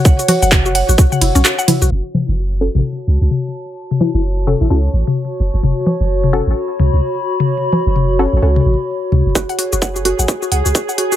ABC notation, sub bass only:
X:1
M:4/4
L:1/16
Q:"Swing 16ths" 1/4=129
K:F#m
V:1 name="Sub bass" clef=bass
z3 F,,,4 A,,, z2 F,,, B,,, z3 B,,, | F,,, z2 F,,,4 A,,, z2 C,, C,, z4 | z3 F,,,4 A,,, C,, z A,,, z3 F,,, F,,, | F,,, z2 F,,,4 A,,, z2 C,, C,, z4 |
z3 F,,,4 A,,, C,, z A,,, z3 C,, F,,, | F,,, z2 F,,,4 A,,, z2 C,, C,, z4 |]